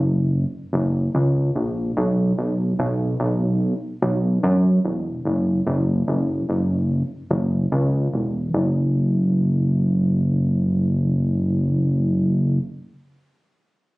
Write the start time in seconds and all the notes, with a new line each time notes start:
Already playing: F#1
0.73 F#1
1.15 C#2
1.56 A#1
1.97 B1
2.38 B1
2.79 B1
3.20 B1
4.02 B1
4.43 F#2
4.85 E1
5.25 F#1
5.67 F#1
6.08 F#1
6.49 F#1
7.31 F#1
7.72 C#2
8.13 E1
8.54 F#1